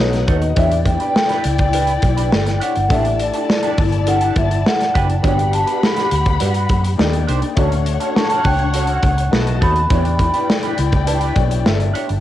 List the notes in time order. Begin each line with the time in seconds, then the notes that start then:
Already playing: B3 D#4 C#5
0.00 B1 D#4 F#4 A4 B4 D#5 F#5
0.13 muted clean electric guitar stroke, snare, closed hi-hat
0.27 D#2 D#4 A4 C#5 D#5, kick, closed hi-hat
0.42 muted clean electric guitar stroke, closed hi-hat
0.55 E2 B3 D4 E4 G4 C#5 D5 E5 G5, kick, closed hi-hat
0.71 muted clean electric guitar stroke, closed hi-hat
0.85 G5, muted clean electric guitar stroke, kick, closed hi-hat
1.00 D4 G4 B4, closed hi-hat
1.15 muted clean electric guitar stroke, snare
1.29 D4 G4 B4, snare, closed hi-hat
1.44 C#2, muted clean electric guitar stroke, closed hi-hat
1.58 muted clean electric guitar stroke, kick, closed hi-hat
1.73 D4 G4 B4, closed hi-hat
1.87 closed hi-hat
2.02 B1, muted clean electric guitar stroke, kick, closed hi-hat
2.17 D4 G4 B4, closed hi-hat
2.32 G1, muted clean electric guitar stroke, snare
2.46 muted clean electric guitar stroke, snare, closed hi-hat
2.60 D4 G4 C#5 F#5, closed hi-hat
2.75 G1, muted clean electric guitar stroke, closed hi-hat
2.88 A1 A3 D4 E4 G4 A4 D5 E5 A5, kick, closed hi-hat
3.05 muted clean electric guitar stroke, closed hi-hat
3.19 D5, muted clean electric guitar stroke, closed hi-hat
3.34 D4 G4 A4, closed hi-hat
3.49 muted clean electric guitar stroke, snare
3.63 D4 G4 A4, closed hi-hat
3.78 G1, muted clean electric guitar stroke, kick, open hi-hat
3.92 muted clean electric guitar stroke, closed hi-hat
4.07 D4 G4 A4 F#5, closed hi-hat
4.21 closed hi-hat
4.36 G1 E5, muted clean electric guitar stroke, kick, closed hi-hat
4.51 muted clean electric guitar stroke, closed hi-hat
4.66 F#5, snare
4.80 muted clean electric guitar stroke, snare, closed hi-hat
4.94 F#1 D4 G4 B4 G5, kick, closed hi-hat
5.09 muted clean electric guitar stroke, closed hi-hat
5.22 G1 B3 D4 F#4 G4 C#5 D5 F#5 B5, kick, closed hi-hat
5.38 muted clean electric guitar stroke, closed hi-hat
5.52 A5, muted clean electric guitar stroke, closed hi-hat
5.67 D4 F#4 B4, closed hi-hat
5.81 B5, muted clean electric guitar stroke, snare
5.96 D4 F#4 B4, snare, closed hi-hat
6.11 D2, muted clean electric guitar stroke, closed hi-hat
6.26 muted clean electric guitar stroke, kick, closed hi-hat
6.40 G2 D4 F#4 B4, closed hi-hat
6.54 closed hi-hat
6.69 F#2, muted clean electric guitar stroke, kick, closed hi-hat
6.84 muted clean electric guitar stroke, closed hi-hat
6.98 D#2 A#3 D4 D#4 G4 D5 G5, muted clean electric guitar stroke, snare
7.12 muted clean electric guitar stroke, closed hi-hat
7.27 C2 D4 G4 C5, closed hi-hat
7.42 muted clean electric guitar stroke, closed hi-hat
7.55 D2 A3 C#4 D4 F#4 A4 C#5 F#5, kick, closed hi-hat
7.71 muted clean electric guitar stroke, closed hi-hat
7.85 muted clean electric guitar stroke, closed hi-hat
8.00 C#4 F#4 A4, closed hi-hat
8.15 A5 C#6, muted clean electric guitar stroke, snare
8.30 C#4 F#4 A4, closed hi-hat
8.44 C#2 G5 F#6, muted clean electric guitar stroke, kick, open hi-hat
8.59 muted clean electric guitar stroke, closed hi-hat
8.73 C#4 F#4 A4 F#5, closed hi-hat
8.87 closed hi-hat
9.02 C#2, muted clean electric guitar stroke, kick, closed hi-hat
9.17 muted clean electric guitar stroke, closed hi-hat
9.31 B1 A3 B3 D#4 F#4 B4 D#5 A5, snare
9.47 muted clean electric guitar stroke, closed hi-hat
9.61 D#2 D#4 A4 C#5 B5, kick, closed hi-hat
9.76 muted clean electric guitar stroke, closed hi-hat
9.88 E2 B3 D4 E4 G4 C#5 D5 G5, kick, closed hi-hat
9.99 D5
10.05 muted clean electric guitar stroke, closed hi-hat
10.19 muted clean electric guitar stroke, kick, closed hi-hat
10.34 D4 G4 B4, closed hi-hat
10.49 muted clean electric guitar stroke, snare
10.63 D4 G4 B4, closed hi-hat
10.78 C#2 B5, muted clean electric guitar stroke, closed hi-hat
10.92 muted clean electric guitar stroke, kick, closed hi-hat
11.06 D4 G4 B4 A5, closed hi-hat
11.21 closed hi-hat
11.36 B1 B3 D4 E4 G4 C#5 G5, muted clean electric guitar stroke, kick, closed hi-hat
11.44 D5
11.50 muted clean electric guitar stroke, closed hi-hat
11.65 G1 E5, muted clean electric guitar stroke, snare
11.79 D5, muted clean electric guitar stroke, closed hi-hat
11.94 D4 G4 C#5, closed hi-hat
12.09 G1, muted clean electric guitar stroke, closed hi-hat